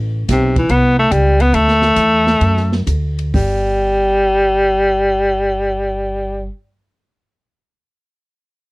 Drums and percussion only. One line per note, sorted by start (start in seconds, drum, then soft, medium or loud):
0.29 kick soft
0.29 snare soft
0.29 hi-hat pedal medium
0.29 ride medium
0.56 kick medium
0.56 ride soft
0.69 kick soft
0.69 ride medium
1.11 kick soft
1.11 hi-hat pedal soft
1.11 ride medium
1.40 ride soft
1.54 kick soft
1.54 ride medium
1.68 snare soft
1.82 snare soft
1.96 kick soft
1.96 hi-hat pedal medium
1.96 ride medium
2.27 snare soft
2.41 kick soft
2.41 ride soft
2.57 snare soft
2.72 snare soft
2.87 kick soft
2.87 hi-hat pedal soft
2.87 ride medium
3.18 ride soft
3.34 kick loud
3.34 open hi-hat medium